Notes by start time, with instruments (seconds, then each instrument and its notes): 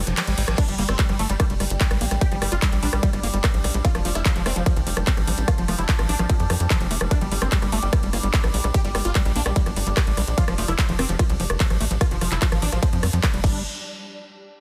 Already playing: synth drone G3 D4, reverse cymbal
0.07 analog synth bass F1, acid bass F3, closed hi-hat
0.17 acid bass F3, cross-stick, clap, closed hi-hat, ride
0.27 analog synth bass A1, acid bass G3, closed hi-hat
0.38 analog synth bass A1, acid bass G3, open hi-hat
0.48 analog synth bass A1, acid bass F3, cross-stick, closed hi-hat
0.58 synth drone G3 D4, acid bass G3, supersaw synth D4, kick, cross-stick, closed hi-hat, crash, ride
0.68 analog synth bass G1, acid bass G3, supersaw synth G3, closed hi-hat
0.79 analog synth bass G1, supersaw synth G3, acid bass A#3, open hi-hat
0.89 analog synth bass G1, acid bass G3, supersaw synth C4, cross-stick, closed hi-hat
0.99 supersaw synth G3, acid bass G3, kick, clap, closed hi-hat, ride
1.09 analog synth bass G1, acid bass F3, supersaw synth G3, cross-stick, closed hi-hat
1.19 analog synth bass G1, acid bass G3, supersaw synth A3, open hi-hat
1.30 analog synth bass G1, supersaw synth G3, acid bass G3, closed hi-hat
1.40 supersaw synth G3, acid bass D4, kick, cross-stick, closed hi-hat, ride
1.50 analog synth bass F1, acid bass G3, closed hi-hat
1.60 analog synth bass G1, acid bass G3, cross-stick, open hi-hat
1.70 analog synth bass G1, closed hi-hat
1.81 acid bass G3, kick, clap, closed hi-hat, ride
1.91 analog synth bass A#1, acid bass G3, cross-stick, closed hi-hat
2.01 analog synth bass A#1, acid bass A#3, open hi-hat
2.11 analog synth bass A#1, acid bass G3, cross-stick, closed hi-hat
2.21 acid bass G3, supersaw synth G4, kick, closed hi-hat, ride
2.32 analog synth bass G1, acid bass F3, supersaw synth G3, closed hi-hat
2.42 analog synth bass G1, acid bass G3, supersaw synth G3, cross-stick, open hi-hat
2.52 analog synth bass G1, acid bass G3, supersaw synth F4, closed hi-hat
2.62 supersaw synth G3, acid bass D4, kick, cross-stick, clap, closed hi-hat, ride
2.72 analog synth bass A#1, acid bass G3, supersaw synth G3, closed hi-hat
2.83 analog synth bass A#1, acid bass G3, supersaw synth D4, open hi-hat
2.93 analog synth bass A#1, supersaw synth G3, cross-stick
3.03 supersaw synth G3, acid bass G3, kick, closed hi-hat, ride
3.13 analog synth bass G1, acid bass G3, cross-stick, closed hi-hat
3.23 analog synth bass G1, acid bass A#3, open hi-hat
3.34 analog synth bass G1, acid bass G3, closed hi-hat
3.44 acid bass G3, kick, cross-stick, clap, closed hi-hat, ride
3.54 analog synth bass A#1, acid bass F3, closed hi-hat
3.64 analog synth bass A#1, acid bass G3, cross-stick, open hi-hat
3.74 analog synth bass A#1, acid bass G3, closed hi-hat
3.85 acid bass C4, supersaw synth F4, kick, closed hi-hat, ride
3.95 analog synth bass F1, acid bass F3, supersaw synth F3, cross-stick, closed hi-hat
4.05 analog synth bass F1, acid bass F3, supersaw synth F3, open hi-hat
4.15 analog synth bass F1, supersaw synth E4, cross-stick, closed hi-hat
4.25 acid bass F3, supersaw synth F3, kick, clap, closed hi-hat, ride
4.36 analog synth bass F1, acid bass F3, supersaw synth F3, closed hi-hat
4.46 analog synth bass F1, acid bass A3, supersaw synth C4, cross-stick, open hi-hat
4.56 analog synth bass F1, acid bass F3, supersaw synth F3, closed hi-hat
4.66 acid bass F3, supersaw synth F3, kick, cross-stick, closed hi-hat, ride
4.76 analog synth bass C2, acid bass E3, closed hi-hat
4.87 analog synth bass F1, acid bass F3, open hi-hat
4.97 analog synth bass F1, acid bass F3, cross-stick, closed hi-hat
5.07 acid bass C4, kick, clap, closed hi-hat, ride
5.17 analog synth bass A1, acid bass F3, cross-stick, closed hi-hat
5.27 analog synth bass A1, acid bass F3, open hi-hat
5.38 analog synth bass A1, closed hi-hat
5.48 acid bass F3, supersaw synth F4, kick, cross-stick, closed hi-hat, ride
5.58 analog synth bass F1, acid bass F3, supersaw synth F3, closed hi-hat
5.68 analog synth bass F1, supersaw synth F3, acid bass A3, cross-stick, open hi-hat
5.79 analog synth bass F1, acid bass F3, supersaw synth E4, closed hi-hat
5.89 supersaw synth F3, acid bass F3, kick, clap, closed hi-hat, ride
5.99 analog synth bass A1, acid bass E3, supersaw synth F3, cross-stick, closed hi-hat
6.09 analog synth bass A1, acid bass F3, supersaw synth D4, open hi-hat
6.19 analog synth bass A1, supersaw synth F3, acid bass F3, cross-stick, closed hi-hat
6.29 supersaw synth F3, acid bass C4, kick, closed hi-hat, ride
6.40 analog synth bass F2, acid bass F3, closed hi-hat
6.50 analog synth bass F2, acid bass F3, cross-stick, open hi-hat
6.60 analog synth bass F2, closed hi-hat
6.70 acid bass F3, kick, cross-stick, clap, closed hi-hat, ride
6.81 analog synth bass F1, acid bass F3, closed hi-hat
6.91 analog synth bass F1, acid bass A3, open hi-hat
7.01 analog synth bass F1, acid bass F3, cross-stick, closed hi-hat
7.11 acid bass G3, supersaw synth D4, kick, cross-stick, closed hi-hat, ride
7.21 analog synth bass G1, acid bass F3, supersaw synth G3, closed hi-hat
7.32 analog synth bass G1, supersaw synth G3, acid bass G3, open hi-hat
7.42 analog synth bass G1, acid bass G3, supersaw synth C4, cross-stick, closed hi-hat
7.52 supersaw synth G3, acid bass G4, kick, clap, closed hi-hat, ride
7.62 analog synth bass G1, supersaw synth G3, acid bass G3, cross-stick, closed hi-hat
7.72 analog synth bass G1, acid bass G3, supersaw synth A3, open hi-hat
7.83 analog synth bass G1, supersaw synth G3, closed hi-hat
7.93 supersaw synth G3, acid bass G3, kick, cross-stick, closed hi-hat, ride
8.03 analog synth bass F1, acid bass G3, closed hi-hat
8.13 analog synth bass G1, acid bass A#3, cross-stick, open hi-hat
8.23 analog synth bass G1, acid bass G3, closed hi-hat
8.34 acid bass G3, kick, clap, closed hi-hat, ride
8.44 analog synth bass A#1, acid bass F3, cross-stick, closed hi-hat
8.54 analog synth bass A#1, acid bass G3, open hi-hat
8.64 analog synth bass A#1, acid bass G3, cross-stick, closed hi-hat
8.74 supersaw synth G4, acid bass G4, kick, closed hi-hat, ride
8.85 analog synth bass G1, supersaw synth G3, acid bass G3, closed hi-hat
8.95 analog synth bass G1, supersaw synth G3, acid bass G3, cross-stick, open hi-hat
9.05 analog synth bass G1, supersaw synth F4, closed hi-hat
9.15 supersaw synth G3, acid bass G3, kick, cross-stick, clap, closed hi-hat, ride
9.25 analog synth bass A#1, acid bass G3, supersaw synth G3, closed hi-hat
9.36 analog synth bass A#1, acid bass A#3, supersaw synth D4, open hi-hat
9.46 analog synth bass A#1, acid bass G3, supersaw synth G3, cross-stick, closed hi-hat
9.56 acid bass G3, supersaw synth G3, kick, closed hi-hat, ride
9.66 analog synth bass G1, acid bass F3, cross-stick, closed hi-hat
9.76 analog synth bass G1, acid bass G3, open hi-hat
9.87 analog synth bass G1, acid bass G3, closed hi-hat
9.97 acid bass G4, kick, cross-stick, clap, closed hi-hat, ride
10.07 analog synth bass A#1, acid bass G3, closed hi-hat
10.17 analog synth bass A#1, acid bass G3, cross-stick, open hi-hat
10.28 analog synth bass A#1, closed hi-hat
10.38 acid bass F3, supersaw synth F4, kick, closed hi-hat, ride
10.48 analog synth bass F1, supersaw synth F3, acid bass F3, cross-stick, closed hi-hat
10.58 analog synth bass F1, supersaw synth F3, acid bass A3, open hi-hat
10.68 analog synth bass F1, acid bass F3, supersaw synth E4, cross-stick, closed hi-hat
10.79 supersaw synth F3, acid bass F3, kick, clap, closed hi-hat, ride
10.89 analog synth bass F1, acid bass E3, supersaw synth F3, closed hi-hat
10.99 analog synth bass F1, acid bass F3, supersaw synth C4, cross-stick, open hi-hat
11.09 analog synth bass F1, supersaw synth F3, acid bass F3, closed hi-hat
11.19 supersaw synth F3, acid bass F4, kick, cross-stick, closed hi-hat, ride
11.30 analog synth bass C2, acid bass F3, closed hi-hat
11.40 analog synth bass F1, acid bass F3, open hi-hat
11.50 analog synth bass F1, cross-stick, closed hi-hat
11.60 acid bass F3, kick, clap, closed hi-hat, ride
11.70 analog synth bass A1, acid bass F3, cross-stick, closed hi-hat
11.81 analog synth bass A1, acid bass A3, open hi-hat
11.91 analog synth bass A1, acid bass F3, closed hi-hat
12.01 acid bass F3, supersaw synth F4, kick, cross-stick, closed hi-hat, ride
12.11 analog synth bass F1, acid bass E3, supersaw synth F3, closed hi-hat
12.21 analog synth bass F1, acid bass F3, supersaw synth F3, cross-stick, open hi-hat
12.32 analog synth bass F1, acid bass F3, supersaw synth E4, clap, closed hi-hat
12.42 supersaw synth F3, acid bass F4, kick, clap, closed hi-hat, ride
12.52 analog synth bass A1, acid bass F3, supersaw synth F3, cross-stick, closed hi-hat
12.62 analog synth bass A1, acid bass F3, supersaw synth D4, open hi-hat
12.72 analog synth bass A1, supersaw synth F3, cross-stick, closed hi-hat
12.83 acid bass F3, supersaw synth F3, kick, closed hi-hat, ride
12.93 analog synth bass F2, acid bass F3, closed hi-hat
13.03 analog synth bass F2, acid bass G3, cross-stick, open hi-hat
13.13 analog synth bass F2, acid bass F3, closed hi-hat
13.23 acid bass F3, kick, cross-stick, clap, closed hi-hat, ride
13.34 analog synth bass F1, acid bass G3, closed hi-hat
13.44 analog synth bass G1, acid bass G3, supersaw synth D4, kick, crash